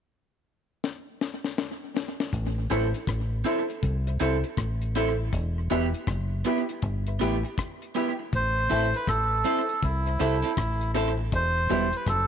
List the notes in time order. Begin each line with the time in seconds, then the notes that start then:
0.84 snare
1.21 snare
1.44 snare
1.58 snare
1.97 snare
2.20 snare
2.33 A1, kick, closed hi-hat
2.70 A1 C4 E4 A4 C5 E5, closed hi-hat
2.94 closed hi-hat
3.07 A1, kick, cross-stick, closed hi-hat
3.44 C4 E4 A4 C5 E5, closed hi-hat
3.69 muted clean electric guitar stroke, closed hi-hat
3.83 C2, kick, closed hi-hat
4.07 C5 E5, closed hi-hat
4.20 C2 C4 E4 A4 C5 E5, closed hi-hat
4.44 muted clean electric guitar stroke, closed hi-hat
4.57 A1, kick, cross-stick, closed hi-hat
4.82 closed hi-hat
4.95 C4 E4 A4 C5 E5, closed hi-hat
5.33 E1, kick, closed hi-hat
5.70 E1 B3 E4 G4 B4 E5, closed hi-hat
5.94 closed hi-hat
6.07 F#1, kick, cross-stick, closed hi-hat
6.45 B3 E4 G4 B4 E5, closed hi-hat
6.69 muted clean electric guitar stroke, closed hi-hat
6.82 G1, kick, closed hi-hat
7.07 B4 E5, closed hi-hat
7.19 A1 B3 E4 G4 B4 E5, closed hi-hat
7.43 muted clean electric guitar stroke, closed hi-hat
7.58 kick, cross-stick, closed hi-hat
7.82 closed hi-hat
7.95 B3 E4 G4 B4 E5, closed hi-hat
8.19 muted clean electric guitar stroke
8.33 A1 C5, kick, closed hi-hat
8.69 A1 C4 E4 A4 C5 E5, closed hi-hat
8.94 B4, closed hi-hat
9.07 A1 A4, kick, cross-stick, closed hi-hat
9.44 C4 E4 A4 C5 E5, closed hi-hat
9.68 muted clean electric guitar stroke, closed hi-hat
9.83 C2 E4, kick, closed hi-hat
10.06 C5 E5, closed hi-hat
10.19 C2 C4 E4 A4 C5 E5, closed hi-hat
10.42 C4 E4 A4, closed hi-hat
10.57 A1, kick, cross-stick, closed hi-hat
10.81 closed hi-hat
10.94 C4 E4 A4 C5 E5, closed hi-hat
11.18 muted clean electric guitar stroke
11.32 E1 C5, kick, closed hi-hat
11.69 E1 G3 B3 E4 G4 B4 E5, closed hi-hat
11.93 B4, closed hi-hat
12.06 F#1 A4, kick, cross-stick, closed hi-hat